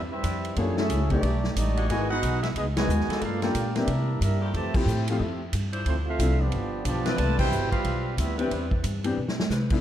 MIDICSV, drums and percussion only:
0, 0, Header, 1, 2, 480
1, 0, Start_track
1, 0, Key_signature, 0, "major"
1, 0, Tempo, 331309
1, 819, Time_signature, 4, 2, 24, 8
1, 14210, End_track
2, 0, Start_track
2, 0, Title_t, "Drums"
2, 342, Note_on_c, 9, 44, 69
2, 342, Note_on_c, 9, 51, 90
2, 343, Note_on_c, 9, 36, 30
2, 487, Note_off_c, 9, 44, 0
2, 487, Note_off_c, 9, 51, 0
2, 488, Note_off_c, 9, 36, 0
2, 645, Note_on_c, 9, 51, 59
2, 790, Note_off_c, 9, 51, 0
2, 816, Note_on_c, 9, 51, 70
2, 818, Note_on_c, 9, 36, 20
2, 961, Note_off_c, 9, 51, 0
2, 963, Note_off_c, 9, 36, 0
2, 1114, Note_on_c, 9, 38, 71
2, 1259, Note_off_c, 9, 38, 0
2, 1297, Note_on_c, 9, 44, 73
2, 1297, Note_on_c, 9, 51, 86
2, 1299, Note_on_c, 9, 36, 23
2, 1442, Note_off_c, 9, 44, 0
2, 1442, Note_off_c, 9, 51, 0
2, 1444, Note_off_c, 9, 36, 0
2, 1594, Note_on_c, 9, 51, 58
2, 1596, Note_on_c, 9, 36, 63
2, 1739, Note_off_c, 9, 51, 0
2, 1741, Note_off_c, 9, 36, 0
2, 1780, Note_on_c, 9, 36, 26
2, 1780, Note_on_c, 9, 51, 83
2, 1925, Note_off_c, 9, 36, 0
2, 1925, Note_off_c, 9, 51, 0
2, 2083, Note_on_c, 9, 38, 58
2, 2228, Note_off_c, 9, 38, 0
2, 2263, Note_on_c, 9, 36, 30
2, 2266, Note_on_c, 9, 44, 75
2, 2266, Note_on_c, 9, 51, 106
2, 2408, Note_off_c, 9, 36, 0
2, 2411, Note_off_c, 9, 44, 0
2, 2411, Note_off_c, 9, 51, 0
2, 2569, Note_on_c, 9, 51, 58
2, 2714, Note_off_c, 9, 51, 0
2, 2746, Note_on_c, 9, 36, 23
2, 2748, Note_on_c, 9, 51, 80
2, 2891, Note_off_c, 9, 36, 0
2, 2893, Note_off_c, 9, 51, 0
2, 3226, Note_on_c, 9, 36, 28
2, 3227, Note_on_c, 9, 44, 68
2, 3227, Note_on_c, 9, 51, 90
2, 3371, Note_off_c, 9, 36, 0
2, 3372, Note_off_c, 9, 44, 0
2, 3372, Note_off_c, 9, 51, 0
2, 3525, Note_on_c, 9, 38, 51
2, 3525, Note_on_c, 9, 51, 58
2, 3670, Note_off_c, 9, 38, 0
2, 3670, Note_off_c, 9, 51, 0
2, 3704, Note_on_c, 9, 51, 76
2, 3705, Note_on_c, 9, 36, 25
2, 3849, Note_off_c, 9, 51, 0
2, 3850, Note_off_c, 9, 36, 0
2, 4008, Note_on_c, 9, 38, 102
2, 4008, Note_on_c, 9, 51, 77
2, 4153, Note_off_c, 9, 38, 0
2, 4153, Note_off_c, 9, 51, 0
2, 4193, Note_on_c, 9, 44, 75
2, 4338, Note_off_c, 9, 44, 0
2, 4350, Note_on_c, 9, 38, 35
2, 4490, Note_on_c, 9, 51, 62
2, 4494, Note_off_c, 9, 38, 0
2, 4510, Note_on_c, 9, 38, 59
2, 4635, Note_off_c, 9, 51, 0
2, 4655, Note_off_c, 9, 38, 0
2, 4657, Note_on_c, 9, 51, 76
2, 4662, Note_on_c, 9, 36, 27
2, 4801, Note_off_c, 9, 51, 0
2, 4807, Note_off_c, 9, 36, 0
2, 4956, Note_on_c, 9, 38, 60
2, 4956, Note_on_c, 9, 51, 57
2, 5101, Note_off_c, 9, 38, 0
2, 5101, Note_off_c, 9, 51, 0
2, 5138, Note_on_c, 9, 44, 71
2, 5138, Note_on_c, 9, 51, 86
2, 5141, Note_on_c, 9, 36, 24
2, 5283, Note_off_c, 9, 44, 0
2, 5283, Note_off_c, 9, 51, 0
2, 5286, Note_off_c, 9, 36, 0
2, 5440, Note_on_c, 9, 38, 53
2, 5440, Note_on_c, 9, 51, 62
2, 5585, Note_off_c, 9, 38, 0
2, 5585, Note_off_c, 9, 51, 0
2, 5614, Note_on_c, 9, 51, 81
2, 5618, Note_on_c, 9, 36, 21
2, 5759, Note_off_c, 9, 51, 0
2, 5763, Note_off_c, 9, 36, 0
2, 6101, Note_on_c, 9, 36, 25
2, 6110, Note_on_c, 9, 44, 67
2, 6110, Note_on_c, 9, 51, 89
2, 6246, Note_off_c, 9, 36, 0
2, 6255, Note_off_c, 9, 44, 0
2, 6255, Note_off_c, 9, 51, 0
2, 6577, Note_on_c, 9, 36, 28
2, 6581, Note_on_c, 9, 51, 64
2, 6722, Note_off_c, 9, 36, 0
2, 6726, Note_off_c, 9, 51, 0
2, 6873, Note_on_c, 9, 36, 104
2, 6873, Note_on_c, 9, 49, 97
2, 7018, Note_off_c, 9, 36, 0
2, 7018, Note_off_c, 9, 49, 0
2, 7061, Note_on_c, 9, 44, 70
2, 7206, Note_off_c, 9, 44, 0
2, 7353, Note_on_c, 9, 51, 95
2, 7498, Note_off_c, 9, 51, 0
2, 7533, Note_on_c, 9, 36, 30
2, 7678, Note_off_c, 9, 36, 0
2, 8008, Note_on_c, 9, 44, 71
2, 8008, Note_on_c, 9, 51, 97
2, 8011, Note_on_c, 9, 36, 27
2, 8153, Note_off_c, 9, 44, 0
2, 8153, Note_off_c, 9, 51, 0
2, 8155, Note_off_c, 9, 36, 0
2, 8300, Note_on_c, 9, 51, 56
2, 8445, Note_off_c, 9, 51, 0
2, 8486, Note_on_c, 9, 51, 75
2, 8489, Note_on_c, 9, 36, 20
2, 8631, Note_off_c, 9, 51, 0
2, 8634, Note_off_c, 9, 36, 0
2, 8970, Note_on_c, 9, 36, 25
2, 8975, Note_on_c, 9, 44, 77
2, 8975, Note_on_c, 9, 51, 93
2, 9115, Note_off_c, 9, 36, 0
2, 9120, Note_off_c, 9, 44, 0
2, 9120, Note_off_c, 9, 51, 0
2, 9442, Note_on_c, 9, 51, 69
2, 9447, Note_on_c, 9, 36, 25
2, 9587, Note_off_c, 9, 51, 0
2, 9592, Note_off_c, 9, 36, 0
2, 9925, Note_on_c, 9, 44, 83
2, 9925, Note_on_c, 9, 51, 96
2, 9926, Note_on_c, 9, 36, 33
2, 10069, Note_off_c, 9, 44, 0
2, 10069, Note_off_c, 9, 51, 0
2, 10071, Note_off_c, 9, 36, 0
2, 10222, Note_on_c, 9, 38, 67
2, 10222, Note_on_c, 9, 51, 66
2, 10367, Note_off_c, 9, 38, 0
2, 10367, Note_off_c, 9, 51, 0
2, 10404, Note_on_c, 9, 51, 82
2, 10407, Note_on_c, 9, 36, 20
2, 10549, Note_off_c, 9, 51, 0
2, 10552, Note_off_c, 9, 36, 0
2, 10704, Note_on_c, 9, 36, 97
2, 10704, Note_on_c, 9, 49, 98
2, 10849, Note_off_c, 9, 36, 0
2, 10849, Note_off_c, 9, 49, 0
2, 10891, Note_on_c, 9, 44, 65
2, 11036, Note_off_c, 9, 44, 0
2, 11187, Note_on_c, 9, 36, 67
2, 11187, Note_on_c, 9, 51, 60
2, 11332, Note_off_c, 9, 36, 0
2, 11332, Note_off_c, 9, 51, 0
2, 11365, Note_on_c, 9, 51, 77
2, 11368, Note_on_c, 9, 36, 23
2, 11510, Note_off_c, 9, 51, 0
2, 11513, Note_off_c, 9, 36, 0
2, 11848, Note_on_c, 9, 36, 25
2, 11851, Note_on_c, 9, 44, 75
2, 11851, Note_on_c, 9, 51, 98
2, 11993, Note_off_c, 9, 36, 0
2, 11996, Note_off_c, 9, 44, 0
2, 11996, Note_off_c, 9, 51, 0
2, 12151, Note_on_c, 9, 51, 62
2, 12296, Note_off_c, 9, 51, 0
2, 12329, Note_on_c, 9, 36, 21
2, 12332, Note_on_c, 9, 51, 74
2, 12474, Note_off_c, 9, 36, 0
2, 12477, Note_off_c, 9, 51, 0
2, 12624, Note_on_c, 9, 36, 81
2, 12769, Note_off_c, 9, 36, 0
2, 12803, Note_on_c, 9, 44, 66
2, 12803, Note_on_c, 9, 51, 90
2, 12807, Note_on_c, 9, 36, 27
2, 12948, Note_off_c, 9, 44, 0
2, 12948, Note_off_c, 9, 51, 0
2, 12952, Note_off_c, 9, 36, 0
2, 13100, Note_on_c, 9, 51, 66
2, 13244, Note_off_c, 9, 51, 0
2, 13449, Note_on_c, 9, 38, 74
2, 13594, Note_off_c, 9, 38, 0
2, 13613, Note_on_c, 9, 38, 101
2, 13758, Note_off_c, 9, 38, 0
2, 13766, Note_on_c, 9, 38, 66
2, 13766, Note_on_c, 9, 44, 69
2, 13911, Note_off_c, 9, 38, 0
2, 13911, Note_off_c, 9, 44, 0
2, 14056, Note_on_c, 9, 49, 93
2, 14062, Note_on_c, 9, 36, 92
2, 14201, Note_off_c, 9, 49, 0
2, 14207, Note_off_c, 9, 36, 0
2, 14210, End_track
0, 0, End_of_file